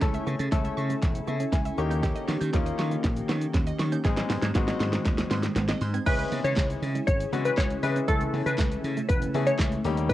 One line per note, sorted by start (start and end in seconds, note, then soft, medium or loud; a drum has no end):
0.01 0.18 C#2 loud
0.01 1.76 C#3 medium
0.01 0.42 A3 medium
0.01 0.42 C#4 medium
0.01 4.01 C#4 medium
0.01 1.76 E4 medium
0.01 0.43 E4 medium
0.01 1.76 A4 medium
0.01 0.09 A4 medium
0.01 0.43 A4 medium
0.01 kick loud
0.01 snare medium
0.01 closed hi-hat medium
0.01 shaker medium
0.14 0.22 E5 medium
0.14 muted clean electric guitar stroke soft
0.14 closed hi-hat medium
0.14 shaker medium
0.27 0.35 C#3 loud
0.27 0.36 B3 medium
0.27 0.34 C#6 medium
0.27 shaker medium
0.39 0.48 C#3 loud
0.39 0.48 C#4 medium
0.39 0.47 A6 medium
0.39 closed hi-hat medium
0.39 shaker medium
0.52 0.69 C#2 loud
0.52 1.33 A3 medium
0.52 0.61 A3 medium
0.52 1.33 C#4 medium
0.52 1.34 E4 medium
0.52 0.60 A4 medium
0.52 1.34 A4 loud
0.52 kick loud
0.52 snare medium
0.52 closed hi-hat medium
0.52 shaker medium
0.64 0.72 E5 medium
0.64 muted clean electric guitar stroke soft
0.64 closed hi-hat soft
0.64 shaker soft
0.77 0.94 C#3 medium
0.77 0.85 C#6 medium
0.77 shaker soft
0.90 0.99 A3 medium
0.90 closed hi-hat soft
0.90 shaker medium
1.02 1.19 E1 loud
1.02 muted clean electric guitar stroke soft
1.02 kick loud
1.02 snare medium
1.02 closed hi-hat medium
1.02 shaker medium
1.15 closed hi-hat medium
1.15 shaker medium
1.27 1.44 C#3 loud
1.27 1.36 B3 medium
1.27 1.51 E5 medium
1.27 1.35 C#6 medium
1.27 shaker medium
1.40 1.49 C#4 medium
1.40 closed hi-hat medium
1.40 shaker medium
1.53 1.69 C#2 loud
1.53 1.62 E4 medium
1.53 1.76 G#5 medium
1.53 kick loud
1.53 snare medium
1.53 closed hi-hat medium
1.53 shaker medium
1.65 1.73 E5 medium
1.65 muted clean electric guitar stroke soft
1.65 closed hi-hat medium
1.65 shaker medium
1.78 2.11 D#2 loud
1.78 6.03 D#3 medium
1.78 2.39 A#3 medium
1.78 4.03 A#3 medium
1.78 2.39 C#4 medium
1.78 2.39 D#4 medium
1.78 4.03 G4 medium
1.78 2.39 G4 loud
1.78 2.01 A#5 medium
1.78 1.86 C#6 medium
1.78 shaker medium
1.91 2.00 D#4 medium
1.91 1.98 G6 medium
1.91 closed hi-hat soft
1.91 shaker medium
2.03 2.12 D#4 medium
2.03 2.11 G4 medium
2.03 kick loud
2.03 snare medium
2.03 closed hi-hat medium
2.03 shaker medium
2.16 2.23 D#5 medium
2.16 muted clean electric guitar stroke soft
2.16 closed hi-hat medium
2.16 shaker medium
2.28 2.37 D#3 loud
2.28 2.37 B3 medium
2.28 2.36 C#6 medium
2.28 snare medium
2.28 open hi-hat medium
2.28 shaker medium
2.41 2.49 D#3 medium
2.41 2.48 G6 medium
2.41 closed hi-hat medium
2.41 shaker medium
2.53 2.70 D#2 loud
2.53 3.35 A#3 medium
2.53 2.63 A#3 medium
2.53 3.35 C#4 medium
2.53 3.35 D#4 medium
2.53 3.35 F4 medium
2.53 2.61 G4 medium
2.53 kick loud
2.53 snare medium
2.53 closed hi-hat medium
2.53 shaker medium
2.66 2.74 D#5 medium
2.66 closed hi-hat medium
2.66 shaker medium
2.79 2.95 D#3 medium
2.79 2.86 C#6 medium
2.79 muted clean electric guitar stroke soft
2.79 snare medium
2.79 open hi-hat medium
2.79 shaker soft
2.91 3.00 A#3 medium
2.91 closed hi-hat soft
2.91 shaker medium
3.04 3.21 A#1 loud
3.04 kick loud
3.04 snare loud
3.04 closed hi-hat medium
3.04 shaker medium
3.16 closed hi-hat medium
3.16 shaker medium
3.29 3.46 D#3 loud
3.29 3.38 B3 medium
3.29 3.37 C#6 medium
3.29 snare loud
3.29 open hi-hat medium
3.29 shaker medium
3.41 closed hi-hat medium
3.41 shaker medium
3.54 3.71 D#2 loud
3.54 3.63 C#4 medium
3.54 kick loud
3.54 snare loud
3.54 closed hi-hat medium
3.54 shaker medium
3.67 3.75 D#5 medium
3.67 closed hi-hat medium
3.67 shaker medium
3.79 3.96 D#3 medium
3.79 3.87 C#6 medium
3.79 muted clean electric guitar stroke soft
3.79 snare loud
3.79 open hi-hat medium
3.79 shaker medium
3.92 4.01 C#4 medium
3.92 4.00 G6 medium
3.92 closed hi-hat soft
3.92 shaker medium
4.05 4.21 G#1 loud
4.05 4.46 G#3 medium
4.05 6.05 G#3 medium
4.05 6.05 C4 medium
4.05 4.46 C4 medium
4.05 4.46 D#4 medium
4.05 4.12 G#4 medium
4.05 4.46 G#4 medium
4.05 kick loud
4.05 snare loud
4.05 closed hi-hat medium
4.05 shaker medium
4.17 4.25 D#5 medium
4.17 muted clean electric guitar stroke soft
4.17 snare loud
4.17 closed hi-hat medium
4.17 shaker medium
4.30 4.38 G#2 loud
4.30 4.39 B3 medium
4.30 4.38 C6 medium
4.30 snare loud
4.30 open hi-hat medium
4.30 shaker medium
4.42 4.51 G#2 loud
4.42 4.52 C4 medium
4.42 4.50 G#6 medium
4.42 snare loud
4.42 closed hi-hat medium
4.42 shaker medium
4.55 4.72 G#1 loud
4.55 5.37 G#3 medium
4.55 4.64 B3 medium
4.55 5.37 C4 medium
4.55 5.37 D#4 medium
4.55 5.37 F#4 loud
4.55 4.63 G#4 medium
4.55 kick loud
4.55 snare loud
4.55 closed hi-hat medium
4.55 shaker medium
4.68 4.75 D#5 medium
4.68 snare loud
4.68 closed hi-hat soft
4.68 shaker medium
4.80 4.97 G#2 loud
4.80 4.88 C6 medium
4.80 snare loud
4.80 open hi-hat medium
4.80 shaker soft
4.93 5.02 C4 medium
4.93 snare loud
4.93 closed hi-hat medium
4.93 shaker medium
5.05 5.22 D#2 loud
5.05 muted clean electric guitar stroke soft
5.05 kick loud
5.05 snare loud
5.05 closed hi-hat medium
5.05 shaker medium
5.18 snare loud
5.18 closed hi-hat medium
5.18 shaker medium
5.31 5.47 G#2 loud
5.31 5.40 B3 medium
5.31 5.39 C6 medium
5.31 snare loud
5.31 open hi-hat medium
5.31 shaker medium
5.43 5.53 C4 medium
5.43 snare loud
5.43 closed hi-hat medium
5.43 shaker medium
5.56 5.72 G#1 loud
5.56 5.65 B3 medium
5.56 snare loud
5.56 closed hi-hat medium
5.56 shaker medium
5.69 5.77 D#5 medium
5.69 snare loud
5.69 closed hi-hat medium
5.69 shaker medium
5.81 5.98 G#2 loud
5.81 5.89 C6 medium
5.81 open hi-hat medium
5.81 shaker medium
5.94 6.03 C4 medium
5.94 6.02 G#6 medium
5.94 closed hi-hat medium
5.94 shaker medium
6.06 6.23 C#2 loud
6.06 9.81 C#3 medium
6.06 6.88 E3 medium
6.06 6.88 G#3 medium
6.06 9.81 C#4 medium
6.06 6.16 C#4 medium
6.06 6.88 C#4 medium
6.06 8.06 E4 medium
6.06 6.88 E4 medium
6.06 8.06 G#4 medium
6.06 6.88 G#4 medium
6.06 6.18 B4 loud
6.06 kick loud
6.06 closed hi-hat medium
6.06 crash loud
6.06 shaker medium
6.19 muted clean electric guitar stroke soft
6.19 closed hi-hat medium
6.19 shaker medium
6.32 6.40 C#3 loud
6.32 6.41 B3 medium
6.32 open hi-hat medium
6.32 shaker medium
6.44 6.53 C#3 loud
6.44 6.80 C#5 medium
6.44 closed hi-hat medium
6.44 shaker medium
6.56 6.74 C#2 loud
6.56 6.66 G#3 medium
6.56 kick loud
6.56 snare loud
6.56 clap loud
6.56 closed hi-hat medium
6.56 shaker medium
6.70 closed hi-hat medium
6.70 shaker medium
6.82 6.99 C#3 loud
6.82 muted clean electric guitar stroke soft
6.82 open hi-hat medium
6.82 shaker soft
6.95 7.04 G#3 medium
6.95 closed hi-hat soft
6.95 shaker medium
7.07 7.24 G#1 loud
7.07 7.18 C#5 medium
7.07 kick loud
7.07 closed hi-hat medium
7.07 shaker medium
7.20 closed hi-hat medium
7.20 shaker medium
7.33 7.49 C#3 loud
7.33 7.73 E3 medium
7.33 7.73 G#3 medium
7.33 7.42 B3 medium
7.33 7.74 C#4 medium
7.33 7.74 E4 medium
7.33 7.74 F#4 medium
7.33 open hi-hat medium
7.33 shaker medium
7.45 7.56 B4 medium
7.45 closed hi-hat medium
7.45 shaker medium
7.57 7.74 C#2 loud
7.57 7.67 C#4 medium
7.57 7.69 C#5 medium
7.57 kick loud
7.57 snare medium
7.57 clap loud
7.57 closed hi-hat medium
7.57 shaker medium
7.70 closed hi-hat medium
7.70 shaker medium
7.83 8.00 C#3 loud
7.83 8.04 E3 medium
7.83 8.04 G#3 medium
7.83 8.04 C#4 medium
7.83 8.04 E4 medium
7.83 8.04 G#4 medium
7.83 7.94 B4 medium
7.83 muted clean electric guitar stroke soft
7.83 open hi-hat medium
7.83 shaker medium
7.96 8.05 C#4 medium
7.96 closed hi-hat medium
7.96 shaker medium
8.08 8.25 C#2 loud
8.08 8.90 E3 medium
8.08 8.90 A3 medium
8.08 9.83 A3 medium
8.08 8.90 C#4 medium
8.08 9.83 E4 medium
8.08 8.90 E4 medium
8.08 8.19 A4 loud
8.08 8.90 A4 medium
8.08 kick loud
8.08 closed hi-hat medium
8.08 shaker medium
8.21 muted clean electric guitar stroke soft
8.21 closed hi-hat medium
8.21 shaker medium
8.33 8.42 C#3 loud
8.33 8.43 B3 medium
8.33 open hi-hat medium
8.33 shaker medium
8.46 8.54 C#3 loud
8.46 8.55 C#4 medium
8.46 8.82 B4 medium
8.46 closed hi-hat medium
8.46 shaker medium
8.58 8.75 C#2 loud
8.58 8.68 A3 medium
8.58 kick loud
8.58 snare loud
8.58 clap loud
8.58 closed hi-hat medium
8.58 shaker medium
8.71 muted clean electric guitar stroke soft
8.71 closed hi-hat medium
8.71 shaker soft
8.84 9.00 C#3 loud
8.84 open hi-hat medium
8.84 shaker soft
8.97 9.06 A3 medium
8.97 closed hi-hat soft
8.97 shaker medium
9.09 9.26 E1 loud
9.09 9.20 B4 medium
9.09 muted clean electric guitar stroke soft
9.09 kick loud
9.09 closed hi-hat medium
9.09 shaker medium
9.22 closed hi-hat medium
9.22 shaker medium
9.34 9.51 C#3 loud
9.34 9.75 E3 medium
9.34 9.75 A3 medium
9.34 9.44 B3 medium
9.34 9.75 C#4 medium
9.34 9.75 E4 medium
9.34 9.75 G#4 medium
9.34 open hi-hat medium
9.34 shaker medium
9.47 9.56 C#4 medium
9.47 9.58 C#5 medium
9.47 closed hi-hat medium
9.47 shaker medium
9.59 9.76 C#2 loud
9.59 9.69 E4 medium
9.59 kick loud
9.59 snare loud
9.59 clap loud
9.59 closed hi-hat medium
9.59 shaker medium
9.72 muted clean electric guitar stroke soft
9.72 closed hi-hat medium
9.72 shaker medium
9.85 10.13 D#2 loud
9.85 10.13 D#3 medium
9.85 10.13 G3 loud
9.85 10.13 A#3 medium
9.85 10.13 C#4 medium
9.85 10.13 D#4 medium
9.85 10.13 G4 medium
9.85 10.13 G4 loud
9.85 open hi-hat medium
9.85 shaker medium
9.97 10.06 D#4 medium
9.97 closed hi-hat medium
9.97 shaker medium
10.09 10.13 D#4 medium
10.09 10.13 B4 loud
10.09 kick loud
10.09 closed hi-hat medium
10.09 shaker medium